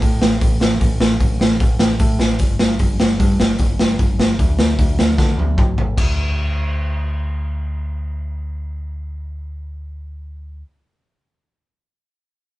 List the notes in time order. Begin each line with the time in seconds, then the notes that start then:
0.01 A2, kick, open hi-hat
0.21 A1, snare
0.41 A1, kick, open hi-hat
0.60 A1, snare
0.80 A1, kick, open hi-hat
1.00 A1, snare
1.20 A1, kick, open hi-hat
1.39 A1, snare
1.60 A1, kick, open hi-hat
1.79 A1, snare
1.99 A2, kick, open hi-hat
2.19 A1, snare
2.39 G1, kick, open hi-hat
2.59 G1, snare
2.79 G1, kick, open hi-hat
3.00 G1, snare
3.19 G2, kick, open hi-hat
3.40 G1, snare
3.58 G1, kick, open hi-hat
3.79 G1, snare
3.99 G1, kick, open hi-hat
4.19 G1, snare
4.39 D2, kick, open hi-hat
4.59 D2, snare
4.79 D2, kick, open hi-hat
4.99 D2, snare
5.18 D3, kick, snare
5.38 D2, high tom
5.57 B1, kick, mid tom
5.77 A1, floor tom
5.97 D2, kick, crash